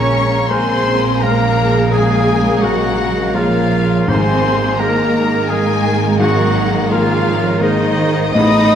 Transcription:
0.00 1.88 A#1 medium
0.00 4.05 A#1 medium
0.00 1.88 A#2 medium
0.00 4.04 C#3 medium
0.00 4.04 G#3 medium
0.00 4.05 A#3 medium
0.00 4.06 A#3 medium
0.00 0.45 C#4 medium
0.00 4.05 G#4 medium
0.00 4.05 A#4 medium
0.00 0.45 C#5 loud
0.00 0.52 C#5 loud
0.00 0.45 A#5 loud
0.00 0.45 C#6 loud
0.48 1.18 G#3 medium
0.48 1.18 A#3 medium
0.48 1.20 C4 medium
0.48 1.18 A#4 medium
0.48 1.23 C5 loud
0.48 1.24 C5 loud
0.48 1.21 G#5 loud
0.48 1.21 C6 loud
1.21 1.88 G#3 medium
1.21 1.91 A#3 loud
1.21 1.88 A#3 medium
1.21 1.91 A#4 loud
1.21 1.92 A#4 medium
1.21 1.88 A#4 medium
1.21 1.90 F5 medium
1.21 1.91 A#5 loud
1.91 4.05 A#1 medium
1.91 4.05 A#2 medium
1.91 2.61 G#3 medium
1.91 2.63 G#4 loud
1.91 2.65 G#4 medium
1.91 2.61 F5 medium
1.91 2.61 G#5 loud
2.62 3.35 F#3 medium
2.62 3.30 G#3 medium
2.62 3.31 A#3 medium
2.62 3.35 F#4 loud
2.62 3.34 F#4 medium
2.62 3.31 A#4 medium
2.62 3.33 D#5 medium
2.62 3.34 F#5 loud
3.34 4.09 F3 medium
3.34 4.05 G#3 medium
3.34 4.05 A#3 medium
3.34 4.09 F4 loud
3.34 4.11 F4 medium
3.34 4.05 A#4 medium
3.34 4.09 C#5 medium
3.34 4.08 F5 loud
4.08 6.17 G#1 medium
4.08 8.30 G#1 medium
4.08 5.10 G#2 loud
4.08 6.17 G#2 medium
4.08 8.30 D#3 medium
4.08 8.30 G#3 medium
4.08 8.18 A#3 medium
4.08 8.31 A#3 medium
4.08 4.79 C4 medium
4.08 8.18 G#4 medium
4.08 8.30 A#4 medium
4.08 4.82 C5 loud
4.08 4.81 C5 loud
4.08 4.79 G#5 loud
4.08 4.78 C6 loud
4.78 5.46 G#3 medium
4.78 5.50 A#3 medium
4.78 5.46 A#3 medium
4.78 5.52 A#4 medium
4.78 5.52 A#4 loud
4.78 5.47 A#4 medium
4.78 5.49 D#5 loud
4.78 5.50 A#5 loud
5.49 6.17 G#3 medium
5.49 6.20 G#3 loud
5.49 6.17 A#3 medium
5.49 6.03 G#4 loud
5.49 6.05 G#4 loud
5.49 6.17 A#4 medium
5.49 5.91 D#5 medium
5.49 6.20 G#5 loud
6.20 8.30 G#1 medium
6.20 8.30 G#2 medium
6.20 6.91 F#3 medium
6.20 6.65 F#4 loud
6.20 6.66 F#4 loud
6.20 6.90 D#5 loud
6.20 6.90 F#5 loud
6.90 7.61 F3 medium
6.90 7.57 G#3 medium
6.90 7.57 A#3 medium
6.90 7.61 F4 loud
6.90 7.64 F4 loud
6.90 7.57 A#4 medium
6.90 7.60 C#5 loud
6.90 7.61 F5 loud
7.60 8.34 D#3 loud
7.60 8.30 G#3 medium
7.60 8.30 A#3 medium
7.60 8.34 D#4 medium
7.60 8.34 D#4 loud
7.60 8.31 A#4 medium
7.60 8.34 C5 medium
7.60 8.33 D#5 loud
8.33 8.75 A1 medium
8.33 8.75 A2 medium
8.33 8.75 C#3 medium
8.33 8.75 B3 medium
8.33 8.75 D#4 loud
8.33 8.75 A4 medium
8.33 8.75 D#5 loud
8.33 8.75 B5 loud
8.33 8.75 D#6 loud

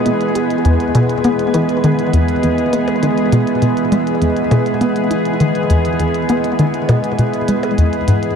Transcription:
0.00 8.36 E3 medium
0.00 8.36 G#3 medium
0.00 8.36 B3 medium
0.00 8.36 G#4 medium
0.00 8.36 B4 medium
0.06 0.19 B2 medium
0.06 closed hi-hat medium
0.21 closed hi-hat soft
0.35 0.57 G#3 medium
0.35 closed hi-hat medium
0.50 closed hi-hat soft
0.65 0.78 E2 medium
0.65 closed hi-hat medium
0.80 closed hi-hat soft
0.95 1.17 B2 loud
0.95 closed hi-hat medium
1.10 closed hi-hat soft
1.24 1.53 B3 medium
1.24 closed hi-hat medium
1.39 closed hi-hat soft
1.54 1.67 E3 medium
1.54 closed hi-hat medium
1.69 closed hi-hat soft
1.84 2.12 D#3 medium
1.84 closed hi-hat medium
1.99 closed hi-hat soft
2.13 2.35 E2 medium
2.13 closed hi-hat medium
2.29 closed hi-hat soft
2.43 2.65 E2 medium
2.43 closed hi-hat medium
2.58 closed hi-hat soft
2.73 2.95 B3 medium
2.73 closed hi-hat medium
2.88 closed hi-hat soft
2.88 percussion blips soft
3.03 3.16 D#3 medium
3.03 closed hi-hat medium
3.18 closed hi-hat soft
3.32 3.46 B2 medium
3.32 closed hi-hat medium
3.47 closed hi-hat soft
3.62 3.75 B2 medium
3.62 closed hi-hat medium
3.77 closed hi-hat soft
3.92 4.14 G#3 medium
3.92 closed hi-hat medium
4.07 closed hi-hat soft
4.22 4.35 E2 medium
4.22 closed hi-hat medium
4.37 closed hi-hat soft
4.51 4.73 B2 loud
4.51 closed hi-hat medium
4.51 percussion blips medium
4.66 closed hi-hat soft
4.81 5.09 B3 medium
4.81 closed hi-hat medium
4.96 closed hi-hat soft
5.11 5.24 E3 medium
5.11 closed hi-hat medium
5.25 closed hi-hat soft
5.40 5.69 D#3 medium
5.40 closed hi-hat medium
5.55 closed hi-hat soft
5.70 5.92 E2 medium
5.70 closed hi-hat medium
5.85 closed hi-hat soft
6.00 6.22 E2 medium
6.00 closed hi-hat medium
6.15 closed hi-hat soft
6.29 6.51 B3 medium
6.29 closed hi-hat medium
6.44 closed hi-hat soft
6.59 6.72 D#3 medium
6.59 closed hi-hat medium
6.74 closed hi-hat soft
6.89 7.02 B2 medium
6.89 closed hi-hat medium
6.89 percussion blips medium
7.04 closed hi-hat soft
7.19 7.32 B2 medium
7.19 closed hi-hat medium
7.34 closed hi-hat soft
7.48 7.70 G#3 medium
7.48 closed hi-hat medium
7.63 closed hi-hat soft
7.63 percussion blips soft
7.78 7.91 E2 medium
7.78 closed hi-hat medium
7.93 closed hi-hat soft
8.08 8.36 G#2 medium
8.08 closed hi-hat medium
8.23 closed hi-hat soft

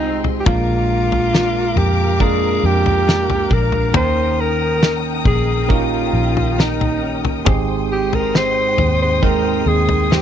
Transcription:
0.00 0.42 C2 medium
0.00 0.47 F3 medium
0.00 0.37 G#3 medium
0.00 0.43 G#3 medium
0.00 0.37 C4 medium
0.00 0.55 C4 medium
0.00 0.25 D#4 medium
0.00 0.37 D#4 medium
0.00 0.55 D#4 medium
0.00 0.38 F4 medium
0.00 0.38 G4 medium
0.00 0.46 G#4 medium
0.00 0.43 D#5 medium
0.00 0.45 G5 medium
0.00 0.43 C6 medium
0.24 floor tom medium
0.40 0.47 G4 medium
0.46 1.72 A#1 loud
0.46 3.94 A#2 medium
0.46 1.73 A#2 medium
0.46 2.11 G#3 medium
0.46 2.11 A#3 medium
0.46 2.11 D4 medium
0.46 1.79 F4 loud
0.46 2.12 F4 medium
0.46 2.11 A#4 medium
0.46 1.34 A#4 medium
0.46 7.43 A#4 medium
0.46 3.91 F5 medium
0.46 3.91 A#5 medium
0.46 3.91 D6 medium
0.46 kick loud
0.46 floor tom loud
1.12 floor tom medium
1.33 2.19 D4 medium
1.33 2.20 F4 medium
1.33 2.21 A#4 medium
1.33 snare loud
1.76 2.59 F2 medium
1.76 2.23 G4 medium
1.76 floor tom medium
2.20 3.85 G#3 medium
2.20 3.85 A#3 medium
2.20 3.86 D4 medium
2.20 3.06 D4 medium
2.20 3.86 F4 medium
2.20 3.07 F4 medium
2.20 2.67 G#4 medium
2.20 3.86 A#4 medium
2.20 3.08 A#4 medium
2.20 kick medium
2.63 3.46 F2 medium
2.63 3.55 G4 loud
2.86 floor tom medium
3.07 3.49 D4 medium
3.07 4.03 F4 medium
3.07 3.94 A#4 medium
3.07 snare loud
3.30 floor tom medium
3.50 3.91 A#1 medium
3.50 4.03 D4 medium
3.50 3.95 A#4 medium
3.50 kick medium
3.72 floor tom medium
3.94 5.21 D#2 loud
3.94 7.47 D#3 medium
3.94 5.22 D#3 medium
3.94 5.61 A#3 medium
3.94 5.61 C#4 medium
3.94 5.61 D#4 medium
3.94 5.61 A#4 medium
3.94 4.82 A#4 medium
3.94 4.42 C5 medium
3.94 5.61 G5 medium
3.94 7.44 G5 medium
3.94 7.44 A#5 medium
3.94 7.44 D#6 medium
3.94 floor tom loud
4.40 5.00 A#4 medium
4.82 5.69 C#4 medium
4.82 5.70 D#4 medium
4.82 5.70 A#4 medium
4.82 snare loud
5.25 6.10 A#1 medium
5.25 5.68 G#4 medium
5.25 kick medium
5.25 floor tom medium
5.68 7.38 A#3 medium
5.68 7.37 C#4 medium
5.68 6.57 C#4 medium
5.68 7.37 D#4 medium
5.68 6.58 D#4 medium
5.68 6.63 F4 medium
5.68 7.38 G4 medium
5.68 7.38 A#4 medium
5.68 6.58 A#4 medium
5.68 kick medium
6.13 7.43 A#1 medium
6.37 floor tom medium
6.58 7.01 C#4 medium
6.58 8.34 D#4 medium
6.58 7.26 D#4 medium
6.58 7.47 A#4 medium
6.58 snare loud
6.81 floor tom medium
7.02 7.56 C#4 medium
7.25 floor tom medium
7.45 8.75 G#1 loud
7.45 8.74 G#2 medium
7.45 10.22 G#2 medium
7.45 9.13 G#3 medium
7.45 10.22 G#3 medium
7.45 9.13 C4 medium
7.45 9.14 D#4 medium
7.45 9.14 G4 medium
7.45 9.14 G#4 medium
7.45 8.34 C5 medium
7.45 10.22 G5 medium
7.45 10.22 C6 medium
7.45 10.22 D#6 medium
7.45 kick loud
7.45 floor tom loud
7.92 8.16 G4 medium
8.13 8.38 A#4 medium
8.13 floor tom medium
8.34 9.21 C4 medium
8.34 9.23 D#4 medium
8.34 9.23 C5 medium
8.34 9.01 C5 loud
8.34 snare loud
8.78 9.62 D#2 medium
8.78 floor tom medium
9.02 9.25 C5 medium
9.22 10.22 G#3 medium
9.22 10.22 C4 medium
9.22 10.09 C4 medium
9.22 10.22 D#4 medium
9.22 10.11 D#4 medium
9.22 10.22 A#4 medium
9.22 9.69 A#4 medium
9.22 10.11 C5 medium
9.22 10.22 G5 medium
9.22 kick medium
9.66 10.22 D#2 medium
9.66 10.15 G#4 medium
9.89 floor tom medium
10.10 10.22 C4 medium
10.10 10.22 D#4 medium
10.10 10.22 G4 medium
10.10 10.22 C5 medium
10.10 snare loud

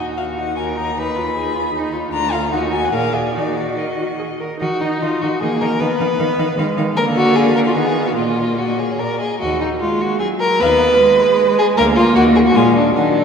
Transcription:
0.00 2.10 D#2 soft
0.00 0.20 D#4 soft
0.00 0.53 F#4 soft
0.17 0.39 F#4 soft
0.17 0.25 F5 medium
0.38 0.57 D#4 soft
0.38 0.56 F#5 medium
0.57 0.78 F#4 soft
0.57 0.96 A#4 soft
0.57 0.65 G#5 medium
0.77 0.96 D#4 soft
0.77 0.99 A#5 medium
0.96 1.17 D#4 soft
0.96 1.35 B4 soft
0.96 1.94 B5 medium
1.16 1.37 F4 soft
1.35 1.56 D#4 soft
1.35 1.74 G#4 soft
1.55 1.73 F4 soft
1.74 1.94 D#4 soft
1.74 2.13 D#4 soft
1.93 2.12 F4 soft
2.12 2.55 D2 medium
2.12 2.34 D4 soft
2.12 2.52 F4 medium
2.12 2.34 A#5 medium
2.32 2.51 F4 soft
2.32 2.51 F5 medium
2.52 2.93 D#2 medium
2.52 2.74 D#4 soft
2.52 2.92 F#4 medium
2.52 2.60 F#5 medium
2.72 2.93 F#4 soft
2.72 2.86 G#5 medium
2.85 2.94 F#5 medium
2.93 3.37 A#2 medium
2.93 3.36 G#4 medium
2.93 3.15 A#4 soft
2.93 3.16 F5 medium
3.14 3.33 G#4 soft
3.14 3.35 D5 medium
3.34 4.40 D#3 soft
3.34 3.57 D#4 soft
3.34 4.40 F#4 soft
3.34 3.79 D5 soft
3.56 3.76 F#4 soft
3.77 3.85 A#4 soft
3.77 4.41 D#5 soft
3.98 4.06 F#4 soft
4.19 4.27 G#4 soft
4.40 4.60 A#4 soft
4.61 4.69 D#3 soft
4.61 5.38 D#4 medium
4.61 4.82 F#4 medium
4.61 4.69 D#5 soft
4.81 4.90 D#3 soft
4.81 5.04 D#4 medium
4.81 4.90 D#5 soft
5.02 5.10 D#3 soft
5.02 5.23 F4 medium
5.02 5.11 D#5 soft
5.21 5.30 D#3 soft
5.21 5.41 F#4 medium
5.21 5.31 D#5 soft
5.42 5.50 D#3 soft
5.42 5.80 A#3 medium
5.42 5.63 G#4 medium
5.42 5.50 D#5 soft
5.61 5.69 D#3 medium
5.61 5.82 A#4 medium
5.61 5.69 D#5 soft
5.80 5.88 D#3 medium
5.80 6.18 B3 medium
5.80 6.77 B4 medium
5.80 5.88 F5 medium
6.00 6.08 D#3 medium
6.00 6.08 F5 medium
6.19 6.27 D#3 medium
6.19 6.58 B3 medium
6.19 6.27 F5 medium
6.39 6.47 D#3 medium
6.39 6.47 F5 medium
6.58 6.66 D#3 medium
6.58 6.98 G#3 medium
6.58 6.66 F5 medium
6.78 6.85 D#3 medium
6.78 6.85 F5 medium
6.96 7.77 D3 medium
6.96 7.75 A#3 medium
6.96 7.05 A#4 medium
6.96 7.77 F5 medium
7.16 7.37 F#4 medium
7.36 7.55 G#4 medium
7.55 7.60 A#4 medium
7.67 7.75 F4 medium
7.76 8.17 D#3 medium
7.76 8.17 B3 medium
7.76 8.09 G#4 medium
7.76 7.98 F#5 medium
7.96 8.18 F5 soft
8.08 8.16 F#4 medium
8.16 8.98 A#2 soft
8.16 9.19 A#3 soft
8.16 8.59 F4 medium
8.16 8.54 D#5 soft
8.58 8.80 F#4 medium
8.58 8.80 D#5 medium
8.78 9.01 G#4 medium
8.78 9.00 C#5 soft
8.99 9.20 A#2 soft
8.99 9.19 A#4 medium
8.99 9.21 D5 medium
9.19 9.39 G#4 medium
9.19 9.40 D#5 soft
9.40 9.74 D#2 medium
9.40 9.60 F#4 medium
9.40 9.59 D#5 soft
9.61 9.69 D#4 medium
9.80 10.21 G#3 medium
9.80 10.02 F4 medium
10.01 10.19 F#4 medium
10.19 10.61 F#3 medium
10.19 10.27 G#4 medium
10.40 10.61 A#4 medium
10.60 10.93 D#2 medium
10.60 10.99 B3 medium
10.60 11.58 B4 medium
10.60 10.79 F5 medium
10.99 11.79 G#3 medium
11.58 11.66 G#4 medium
11.77 12.09 D2 medium
11.77 12.54 A#3 medium
11.77 11.85 A#4 loud
11.77 11.96 F5 medium
11.96 12.15 F4 medium
12.15 12.49 D#2 medium
12.15 12.23 F#4 medium
12.15 12.34 F#5 medium
12.35 12.39 G#4 medium
12.47 12.57 F#4 medium
12.55 12.89 A#2 medium
12.55 12.95 G#3 medium
12.55 12.75 F4 medium
12.55 12.73 G#5 medium
12.76 12.95 D4 medium
12.95 13.24 D#3 medium
12.95 13.24 F#3 medium
12.95 13.24 D4 medium
12.95 13.15 F#5 soft

